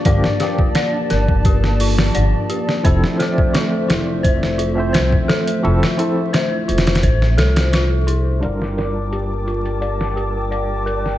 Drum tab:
HH |x---x---x---x---x---o---x---x---|x---x---x---x---x---x---x-----x-|----x---x---xxxxx---x-x-x---x---|x---x---x---x-x-x---x---x---x---|
SD |--o-o---o---o-----o---o-------o-|--o-o---o---o-----o-----o---o---|--o-----o----ooo--o-o-o-o-------|--o-o-------------o-----------o-|
BD |o-----o-------o-o---------------|o-----o---------o---------o-----|----------------o---------------|--------------------------------|